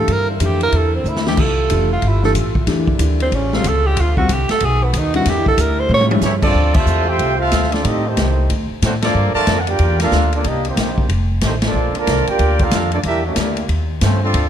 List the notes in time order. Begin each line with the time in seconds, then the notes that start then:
Already playing: A4
0.07 G2 D3 A#3 C4 E4, kick, ride
0.12 A#4
0.30 D4
0.40 F2 E3 A3 D4 G4, kick, hi-hat pedal, ride
0.45 G4
0.61 A#4, ride
0.72 E2 A4, kick, ride
0.95 C4
1.04 D2, hi-hat pedal
1.09 E4
1.16 snare
1.26 E3 A3 D4 G4, snare
1.37 C2 G3 A3 E4 F4 A4, kick, crash
1.70 F1 E3 A3 D4 G4, kick, hi-hat pedal, ride
1.92 F4
2.02 G1, kick, ride
2.07 E4
2.23 E3 A3 D4 G4 A4, snare
2.35 A1, kick, hi-hat pedal, ride
2.55 kick
2.67 E2 D3 E3 G3 A3 A#3 D4 E4 G4, kick, snare, ride
2.87 kick
2.99 D2 E3 A3 D4 E4, kick, hi-hat pedal, ride
3.20 C4, ride
3.31 A1 C#3 A3 F4, kick, ride
3.36 C#4
3.53 G3 C4 F4 A4, snare
3.64 C#2, kick, hi-hat pedal, ride
3.68 A4
3.87 G4
3.96 D2 D3 C4, kick, ride
4.01 F4
4.17 G3 C4 F4 F#4 A4, kick
4.29 C2 G4, kick, hi-hat pedal, ride
4.49 A4, muted upright bass stroke, snare, ride
4.60 B1 D#3 B3 F#4, kick, ride
4.64 G#4
4.84 B3
4.93 D#2 D#4, kick, hi-hat pedal, ride
5.14 D3 G3 C4 E4 F#4, ride
5.25 E2 D3 G3 A#3 E4, kick, snare, ride
5.29 G4
5.46 A4, kick
5.57 D2 A#4, kick, hi-hat pedal, ride
5.79 C5
5.89 A2 C#3 A3 F4, high tom
5.94 C#5
6.01 high tom
6.11 F3 G3 C#4 E4, high tom
6.21 G2 E3 G3 A3 C#4 E4 G4 C#5, snare, hi-hat pedal
6.42 F3 A3 C4 D4 F4 A4 D5, kick, crash
6.54 D2, kick
6.74 C3 F3 A3 F4 C5 E5 A5, kick, crash
6.86 E2, hi-hat pedal
7.05 A3 C4 F4 G4 C5 E5 G5
7.19 C2, kick, ride
7.37 A3 C4 F4 A4 E5 F5
7.52 D2, kick, snare, hi-hat pedal, ride
7.63 snare
7.69 F3 A3 C4 D4 F4 A4 D5, ride
7.74 snare
7.82 A2 G3 C4 D#4 G4 A4 D#5, kick, ride
8.06 D#3 G3 A3 C4 D#4 G4 C5
8.17 C2, kick, snare, hi-hat pedal, ride
8.50 D2, kick, ride
8.70 muted upright bass stroke
8.82 A2 F#3 A3 C4 D4 F#4 C5, kick, snare, hi-hat pedal, ride
9.02 F3 A#3 D4 F4 A4 D5, snare, ride
9.14 G2
9.34 D3 F3 A3 F4 A#4 D5 A5, muted upright bass stroke
9.47 F2, kick, snare, hi-hat pedal, ride
9.59 F#5
9.67 A#3 D4 F4 G4 A#4 D5 G5, ride
9.79 E2, kick, ride
10.00 A#3 D4 F4 A4 A#4 F5, snare, ride
10.11 D2, kick, snare, hi-hat pedal
10.33 F3 A#3 D4 F4 A4 D5, ride
10.44 C2 G3 A#3 D4 G4 D#5, kick, ride
10.48 D#4
10.65 D#3 G3 A#3 C4 D#4 G4 C5, ride
10.76 A#1, kick, snare, hi-hat pedal, ride
10.98 kick
11.09 F1, kick, ride
11.41 A1 A3 C4 D#4 G4 C5, kick, snare, hi-hat pedal, ride
11.45 D#3 A3
11.62 F3, snare, ride
11.66 A#3 D4 F4 A4 D5
11.73 A#1
11.94 D3 F3 A#3 F4 A#4 D5 A5, muted upright bass stroke, ride
12.07 C2, kick, snare, hi-hat pedal, ride
12.27 A#3 D4 F4 G4 A#4 D5 G5, ride
12.39 D2, kick, ride
12.59 A#3 D4 F4 A4 A#4 F5, kick, ride
12.71 F2, kick, snare, hi-hat pedal, ride
12.92 F3 A3 A#3 D4 F4 A4 D5, ride
13.03 E2 G3 A#3 D4 G4 A#4 E5, kick, ride
13.08 E4
13.24 G3 A#3 D4 E4 G4 D5
13.36 D2, kick, snare, hi-hat pedal, ride
13.57 ride
13.68 D#2, kick, ride
14.01 G2 A3 C4 C#4 F4 C5, kick, snare, hi-hat pedal, ride
14.22 F3 A3 C4 D4 F4 A4 D5
14.34 D2, kick, ride